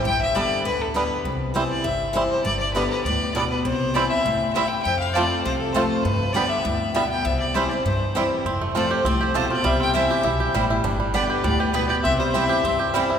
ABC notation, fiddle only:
X:1
M:4/4
L:1/16
Q:1/4=200
K:C
V:1 name="Fiddle"
g2 e2 d4 B2 A2 B3 z | z4 c2 d2 e4 z2 c2 | d2 d2 B2 B2 d4 d2 B2 | c4 d2 e6 e2 g2 |
g2 f2 d4 c2 A2 c2 c2 | B4 d2 e6 e2 g2 | e2 d2 c2 d2 c6 z2 | z4 d2 c2 d2 c2 c2 d2 |
e2 g2 e8 z4 | z4 d2 B2 d2 B2 B2 d2 | e2 c2 e8 z4 |]